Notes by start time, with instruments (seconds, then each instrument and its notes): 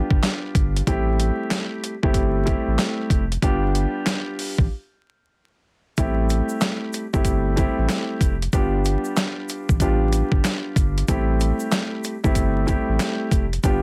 Already playing: upright piano G3 B3 D4 F4 G4
0.10 sub bass G1, kick
0.23 snare, clap, closed hi-hat
0.55 sub bass G1, kick, closed hi-hat
0.76 closed hi-hat
0.87 sub bass A1, upright piano G3 A3 C4 E4 G4, kick, closed hi-hat
1.20 closed hi-hat
1.51 snare, clap, closed hi-hat
1.84 closed hi-hat
2.03 sub bass G1, upright piano G3 A3 C4 E4 G4, kick
2.14 kick, closed hi-hat
2.45 upright piano G3 A3 C4 E4 G4, kick, closed hi-hat
2.67 sub bass A1
2.79 snare, clap, closed hi-hat
3.10 sub bass F1, kick, closed hi-hat
3.32 closed hi-hat
3.42 sub bass G1, upright piano G3 B3 D4 F4 G4, kick, closed hi-hat
3.75 closed hi-hat
4.06 snare, clap, closed hi-hat
4.39 open hi-hat
4.58 sub bass A1, kick
5.97 sub bass A1, upright piano G3 A3 C4 E4 G4, kick, closed hi-hat, shaker
6.29 closed hi-hat, shaker
6.49 shaker
6.61 snare, clap, closed hi-hat, shaker
6.93 closed hi-hat, shaker
7.13 sub bass G1, upright piano G3 A3 C4 E4 G4, kick, shaker
7.25 kick, closed hi-hat, shaker
7.56 upright piano G3 A3 C4 E4 G4, kick, closed hi-hat, shaker
7.78 sub bass A1
7.89 snare, clap, closed hi-hat, shaker
8.21 sub bass F1, kick, closed hi-hat, shaker
8.42 closed hi-hat
8.53 sub bass G1, upright piano G3 B3 D4 F4 G4, kick, closed hi-hat, shaker
8.85 closed hi-hat, shaker
9.05 shaker
9.17 snare, clap, closed hi-hat, shaker
9.49 closed hi-hat, shaker
9.69 sub bass A1, kick, shaker
9.80 upright piano G3 B3 D4 F4 G4, kick, closed hi-hat, shaker
10.13 closed hi-hat, shaker
10.32 sub bass G1, kick
10.44 snare, clap, closed hi-hat, shaker
10.76 sub bass G1, kick, closed hi-hat, shaker
10.98 closed hi-hat
11.08 sub bass A1, upright piano G3 A3 C4 E4 G4, kick, closed hi-hat, shaker
11.40 closed hi-hat, shaker
11.60 shaker
11.72 snare, clap, closed hi-hat, shaker
12.04 closed hi-hat, shaker
12.24 sub bass G1, upright piano G3 A3 C4 E4 G4, kick, shaker
12.35 kick, closed hi-hat, shaker
12.66 upright piano G3 A3 C4 E4 G4, kick, closed hi-hat, shaker
12.89 sub bass A1
13.00 snare, clap, closed hi-hat, shaker
13.31 sub bass F1, kick, closed hi-hat, shaker
13.53 closed hi-hat
13.63 sub bass G1, upright piano G3 B3 D4 F4 G4, kick, closed hi-hat, shaker